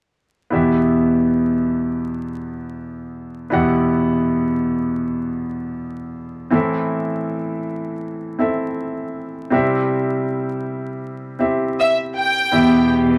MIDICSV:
0, 0, Header, 1, 4, 480
1, 0, Start_track
1, 0, Key_signature, 1, "minor"
1, 0, Tempo, 750000
1, 333, Time_signature, 4, 2, 24, 8
1, 8436, End_track
2, 0, Start_track
2, 0, Title_t, "Violin section"
2, 0, Program_c, 0, 48
2, 7543, Note_on_c, 0, 76, 62
2, 7649, Note_off_c, 0, 76, 0
2, 7784, Note_on_c, 0, 79, 80
2, 8233, Note_off_c, 0, 79, 0
2, 8436, End_track
3, 0, Start_track
3, 0, Title_t, "Grand piano"
3, 0, Program_c, 1, 0
3, 322, Note_on_c, 1, 59, 49
3, 329, Note_on_c, 1, 64, 44
3, 333, Note_on_c, 1, 40, 48
3, 333, Note_on_c, 1, 47, 48
3, 336, Note_on_c, 1, 67, 44
3, 344, Note_on_c, 1, 76, 51
3, 444, Control_c, 1, 64, 127
3, 2222, Note_off_c, 1, 59, 0
3, 2225, Note_off_c, 1, 64, 0
3, 2227, Note_off_c, 1, 47, 0
3, 2228, Note_off_c, 1, 40, 0
3, 2229, Note_off_c, 1, 67, 0
3, 2233, Note_off_c, 1, 76, 0
3, 2241, Note_on_c, 1, 59, 52
3, 2248, Note_on_c, 1, 64, 47
3, 2250, Note_on_c, 1, 40, 51
3, 2251, Note_on_c, 1, 47, 49
3, 2255, Note_on_c, 1, 67, 44
3, 2263, Note_on_c, 1, 78, 59
3, 4141, Note_off_c, 1, 59, 0
3, 4145, Note_off_c, 1, 64, 0
3, 4146, Note_off_c, 1, 40, 0
3, 4146, Note_off_c, 1, 47, 0
3, 4148, Note_off_c, 1, 67, 0
3, 4152, Note_off_c, 1, 78, 0
3, 4163, Note_on_c, 1, 60, 54
3, 4168, Note_on_c, 1, 64, 49
3, 4173, Note_on_c, 1, 45, 52
3, 4173, Note_on_c, 1, 52, 52
3, 4175, Note_on_c, 1, 69, 51
3, 4180, Control_c, 1, 64, 0
3, 4184, Note_on_c, 1, 76, 57
3, 4292, Control_c, 1, 64, 127
3, 5344, Note_off_c, 1, 60, 0
3, 5346, Note_off_c, 1, 64, 0
3, 5350, Note_off_c, 1, 69, 0
3, 5354, Note_off_c, 1, 76, 0
3, 5367, Note_on_c, 1, 60, 42
3, 5370, Note_on_c, 1, 64, 39
3, 5374, Note_on_c, 1, 69, 38
3, 5378, Note_on_c, 1, 76, 47
3, 6067, Note_off_c, 1, 52, 0
3, 6068, Note_off_c, 1, 45, 0
3, 6073, Note_off_c, 1, 60, 0
3, 6079, Note_off_c, 1, 64, 0
3, 6082, Note_on_c, 1, 60, 55
3, 6088, Note_on_c, 1, 64, 52
3, 6093, Note_on_c, 1, 48, 54
3, 6094, Note_off_c, 1, 69, 0
3, 6094, Note_on_c, 1, 55, 56
3, 6095, Note_off_c, 1, 76, 0
3, 6095, Note_on_c, 1, 67, 50
3, 6102, Control_c, 1, 64, 0
3, 6104, Note_on_c, 1, 76, 65
3, 6231, Control_c, 1, 64, 127
3, 7263, Note_off_c, 1, 60, 0
3, 7267, Note_off_c, 1, 64, 0
3, 7270, Note_off_c, 1, 67, 0
3, 7275, Note_off_c, 1, 76, 0
3, 7289, Note_on_c, 1, 60, 42
3, 7293, Note_on_c, 1, 64, 36
3, 7297, Note_on_c, 1, 67, 39
3, 7299, Note_on_c, 1, 76, 46
3, 7987, Note_off_c, 1, 48, 0
3, 7988, Note_off_c, 1, 55, 0
3, 8002, Note_off_c, 1, 64, 0
3, 8007, Note_off_c, 1, 67, 0
3, 8009, Note_on_c, 1, 59, 54
3, 8010, Note_off_c, 1, 76, 0
3, 8011, Note_off_c, 1, 60, 0
3, 8012, Note_on_c, 1, 64, 51
3, 8014, Note_on_c, 1, 40, 50
3, 8015, Note_on_c, 1, 47, 49
3, 8016, Note_on_c, 1, 67, 50
3, 8020, Control_c, 1, 64, 0
3, 8020, Note_on_c, 1, 76, 60
3, 8117, Control_c, 1, 64, 127
3, 8436, Note_off_c, 1, 40, 0
3, 8436, Note_off_c, 1, 47, 0
3, 8436, Note_off_c, 1, 59, 0
3, 8436, Note_off_c, 1, 64, 0
3, 8436, Note_off_c, 1, 67, 0
3, 8436, Note_off_c, 1, 76, 0
3, 8436, End_track
4, 0, Start_track
4, 0, Title_t, "String section"
4, 0, Program_c, 2, 48
4, 8018, Note_on_c, 2, 40, 57
4, 8018, Note_on_c, 2, 47, 50
4, 8018, Note_on_c, 2, 52, 48
4, 8020, Note_on_c, 2, 67, 53
4, 8436, Note_off_c, 2, 40, 0
4, 8436, Note_off_c, 2, 47, 0
4, 8436, Note_off_c, 2, 52, 0
4, 8436, Note_off_c, 2, 67, 0
4, 8436, End_track
0, 0, End_of_file